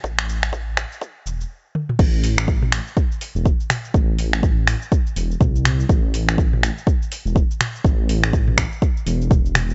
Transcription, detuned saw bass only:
X:1
M:4/4
L:1/16
Q:"Swing 16ths" 1/4=123
K:Am
V:1 name="Detuned saw bass" clef=bass
A,,,6- A,,, z3 E,,, z4 z | A,,,6- A,,, z4 E,,, z4 | A,,,6- A,,, z3 E,,, z C,,4 | A,,,6- A,,, z4 E,,, z4 |
A,,,6- A,,, z3 E,,,6 |]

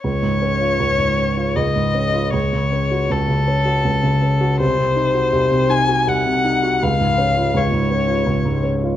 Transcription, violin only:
X:1
M:3/4
L:1/8
Q:1/4=80
K:Db
V:1 name="Violin"
d4 e2 | d2 =A4 | c3 a g2 | f2 d3 z |]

